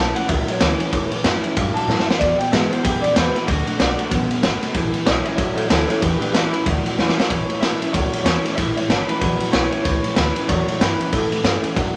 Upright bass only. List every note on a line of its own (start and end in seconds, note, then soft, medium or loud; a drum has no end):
0.00 0.16 B1 loud
0.29 0.47 C#2 loud
0.48 muted upright bass stroke medium
0.61 0.79 D2 loud
0.93 1.11 E2 medium
1.24 1.42 F#2 loud
1.43 muted upright bass stroke medium
1.57 1.75 G2 medium
1.75 muted upright bass stroke medium
1.87 2.06 A2 loud
2.07 muted upright bass stroke medium
2.21 2.39 E2 medium
2.39 muted upright bass stroke medium
2.52 2.71 G#2 loud
2.85 3.03 F#2 loud
3.04 muted upright bass stroke medium
3.16 3.34 E2 medium
3.48 3.66 D2 medium
3.79 3.98 B1 loud
4.11 4.30 A1 medium
4.44 4.62 G1 medium
4.63 muted upright bass stroke medium
4.75 4.93 A1 medium
4.94 muted upright bass stroke medium
5.07 5.25 B1 loud
5.38 5.56 C#2 medium
5.70 5.89 D2 medium
5.90 muted upright bass stroke medium
6.02 6.21 E2 medium
6.34 6.52 C#2 loud
6.67 6.84 D2 medium
6.97 7.16 E2 loud
7.17 muted upright bass stroke soft
7.30 7.48 A1 medium
7.62 7.80 B1 medium
7.81 muted upright bass stroke soft
7.94 8.12 C#2 medium
8.25 8.43 E2 loud
8.58 8.75 A1 medium
8.88 9.07 G1 medium
9.08 muted upright bass stroke medium
9.22 9.39 A1 medium
9.40 muted upright bass stroke medium
9.53 9.72 B1 medium
9.85 10.04 C#2 medium
10.17 10.36 D2 medium
10.36 muted upright bass stroke medium
10.49 10.68 E2 medium
10.81 10.99 G2 loud
11.12 11.31 A2 medium
11.31 muted upright bass stroke medium
11.44 11.63 G2 loud
11.63 muted upright bass stroke medium
11.77 11.95 F#2 loud